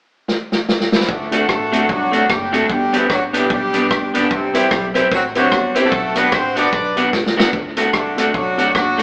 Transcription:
0.28 snare
0.52 snare
0.69 snare
0.80 snare
0.92 E3 C4 E4, snare
1.00 snare
1.09 D2 D3 A3 D4, kick
1.31 A3 D4 F#4 A4, closed hi-hat
1.49 A1, kick, cross-stick
1.71 A3 D4 F#4 A4, closed hi-hat
1.89 C2 F#3 D4 F#4 A4, kick
2.12 F#3 A3 D4 F#4 A4, closed hi-hat
2.29 F#1 G3 D4 G4, kick, cross-stick
2.52 A3 D4 F#4 A4, closed hi-hat
2.69 G1 G3 D4 G4, kick
2.92 E3 B3 C4 D4 E4 G4 B4, closed hi-hat
3.10 A1 F#3 D4 F#4 G4 B4, kick, cross-stick
3.33 G3 B3 D4 E4 G4 B4, closed hi-hat
3.50 B1 G3 D4 G4, kick
3.73 B3 D4 G4 B4, closed hi-hat
3.90 G1 G4 B4, kick, cross-stick
4.14 A1 D3 B3 D4 G4 B4, closed hi-hat
4.31 C2 C3 G3 C4, kick
4.53 G3 C4 E4 G4 C5, closed hi-hat
4.71 B1 G4 C5, kick, cross-stick
4.94 C4 E4 G4 C5, closed hi-hat
5.11 A1 F#3 C4 F#4 G4 C5, kick
5.34 F#3 C4 D4 E4 F#4 G4 C5, closed hi-hat
5.51 G1 G4 C5, kick, cross-stick
5.74 G3 C4 E4 G4 C5, closed hi-hat
5.85 A3 F#4 A4
5.92 B1, kick
6.15 B3 D4 F#4 G4 B4, closed hi-hat
6.32 A1 C4 F#4 B4 C5, kick, cross-stick
6.55 B3 D4 F#4 B4 D5, closed hi-hat
6.72 B1 F#4 B4, kick
6.95 B3 D4 F#4 B4, closed hi-hat
7.12 C#2 F#4 B4, kick, snare
7.26 snare
7.36 B3 D4 F#4 B4, snare
7.53 D2, kick
7.76 A3 D4 F#4 A4, closed hi-hat
7.93 C2 D3 A3 D4, kick, cross-stick
8.16 A3 D4 F#4 A4, closed hi-hat
8.34 B1 F#3 D4 F#4 A4, kick
8.57 A3 D4 F#4 A4, closed hi-hat
8.75 F#1 F#3 D4 F#4, kick, cross-stick
8.97 A3 D4 F#4 A4, closed hi-hat

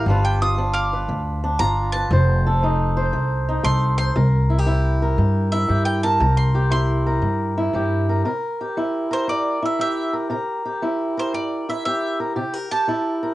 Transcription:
Already playing: F5
0.06 G1 G2 G3 D4 F4
0.10 B4
0.25 G5
0.42 F4 D#6
0.58 G3 D4
0.73 F5 D6
0.93 B4
1.08 D2 D3
1.44 D4
1.59 G1 G3 F4 A#5
1.92 B4 A5
2.11 F1 F3 C5
2.47 A4
2.63 A3 D#4
2.97 C5
3.13 C2 C3
3.49 D#4
3.63 C2 A3 A4 C6
3.98 C5 C6
4.16 C2 C3 A#4
4.50 E4
4.58 G4
4.66 G3 E4
5.02 A#4
5.18 G2
5.52 E4 E5
5.69 G2 G3 G4
5.85 G5
6.03 A#4 A5
6.20 C2 C3 A#4
6.37 C6
6.55 G4
6.71 G3 E4 C6
7.07 A#4
7.22 G2
7.58 E4
7.73 G2 G3 G4
8.09 A#4
8.25 C3 A#4
8.61 G4
8.77 G3 E4
9.11 A#4 C5
9.28 G2 D5
9.62 E4 E5
9.79 G3 G4 E5
10.13 A#4
10.30 C3 A#4
10.65 G4
10.82 G3 E4
11.17 A#4 C5
11.34 G2 D5
11.69 E4 E5
11.85 G3 G4 E5
12.20 A#4
12.36 C3 G4
12.54 A#4
12.72 G4 A5
12.88 G3 E4
13.23 A#4

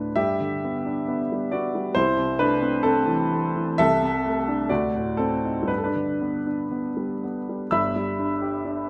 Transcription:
Already playing: D2 A2 A3 D4 B4
0.16 G2 G4 E5
0.40 D3
0.65 B3
0.85 D4
1.08 B3
1.32 G3
1.52 B3 F#4 D5
1.75 G3
1.95 C2 E4 C5
2.18 C3
2.39 A3 D4 B4
2.61 C4
2.83 A3 C4 A4
3.06 E3
3.32 A3
3.56 E3
3.78 C2 A4 E5
4.02 C3
4.26 A3
4.48 D4
4.70 D2 F#4 D5
4.96 A2
5.17 C4 A4
5.44 D#4
5.63 G2
5.68 B4
5.78 A4
5.84 D4 B4
5.95 D3
6.21 B3
6.47 D4
6.71 B3
6.97 G3
7.24 B3
7.49 G3
7.71 G1 G2 E5 B5 E6
7.96 G3
8.19 D4
8.42 G4
8.65 D4

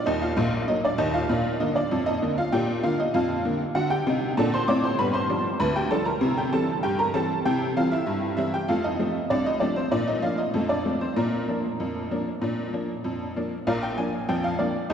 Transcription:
0.06 D#2 D#3 D#4 D#5
0.22 F4 F5
0.37 A#1 A#2
0.68 F#3 A#3 D#4 D#5
0.85 D4 D5
0.98 D#2 D#3 D#4 D#5
1.14 F4 F5
1.29 A#2 D4
1.60 D3 A#3 D#4 D#5
1.76 D4 D5
1.91 F2
2.06 D#4 D#5
2.22 D3 A#3
2.38 F4 F5
2.52 A#2 D4 G4 G5
2.83 D3 A#3 F4 F5
3.00 D#4 D#5
3.14 F2 F4 F5
3.45 D3 A#3
3.75 D3 F#4 F#5
3.90 G4 G5
4.07 C3 D#4
4.37 A#2 D4 A4 A5
4.54 C5 C6
4.68 A2 C4 D5 D6
4.84 C5 C6
4.99 G2 B3 B4 B5
5.14 C5 C6
5.29 F3 G3 D4
5.60 D2 B4 B5
5.76 G4 G5
5.91 F3 G3 D4 A4 A5
6.06 A#4 A#5
6.21 C3 E4
6.38 G4 G5
6.52 E3 G3 C4 A4 A5
6.83 G2 G4 G5
6.99 A#4 A#5
7.14 E3 G3 C4 A4 A5
7.45 C3 E4 G4 G5
7.76 E3 G3 C4 F4 F5
7.92 E4 E5
8.07 G2
8.37 E3 G3 C4 E4 E5
8.54 G4 G5
8.68 F2 A3 F4 F5
8.84 D#4 D#5
8.99 F3 A3 C4
9.30 C2 D4 D5
9.46 D#4 D#5
9.60 F3 A3 C4 D4 D5
9.76 C4 C5
9.92 A#2 D4 D5
10.07 D#4 D#5
10.22 F3 A#3 D4 F4 F5
10.38 D#4 D#5
10.54 F2 A3
10.69 D4 D5
10.85 F3 A3 C4
11.01 C4 C5
11.16 A#2 A#3 D4 A#4
11.48 F3 A#3 D4
11.80 F2
12.11 F3 A#3 D4
12.42 A#2 D4
12.73 F3 A#3 D4
13.04 F2
13.36 F3 A#3 D4
13.67 A#1 A#2 A#4 D5 F5
13.83 G5
13.98 F3 A#3 D4 G#5
14.29 F2 F3 G5
14.44 F5
14.59 F3 A#3 D4 D5
14.90 D#2 D#3 D#5

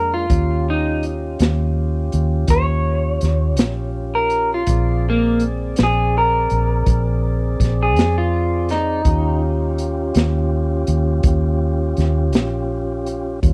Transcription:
Already playing: F2 G#3 A#3 D4 A#4
0.14 F4
0.29 D#2 C#4 F4 G4, kick, closed hi-hat
0.70 D#4
1.03 closed hi-hat
1.39 D#2, snare, closed hi-hat
2.12 D#2, closed hi-hat
2.48 D#2 C#5, kick, closed hi-hat
3.21 D#2, snare, closed hi-hat
3.57 A#1, snare, closed hi-hat
4.15 A#4
4.30 closed hi-hat
4.54 F4
4.66 A#1 C4 G#4 D5, kick, closed hi-hat
5.10 A#3
5.40 closed hi-hat
5.76 A#1, snare, closed hi-hat
5.83 G#4
6.18 A#4
6.50 A#1, closed hi-hat
6.86 A#1, kick, closed hi-hat
7.60 A#1, kick, snare, closed hi-hat
7.83 G#4
7.96 F2, snare, closed hi-hat
8.18 F4
8.69 D#4, snare, closed hi-hat
9.05 D#2 C#4 F4 G4, kick, closed hi-hat
9.78 closed hi-hat
10.14 D#2, snare, closed hi-hat
10.87 D#2, closed hi-hat
11.23 D#2, kick, closed hi-hat
11.97 D#2, snare, closed hi-hat
12.33 A#1, snare, closed hi-hat
13.06 closed hi-hat
13.42 D#2 G3 C#4 F4, kick, closed hi-hat

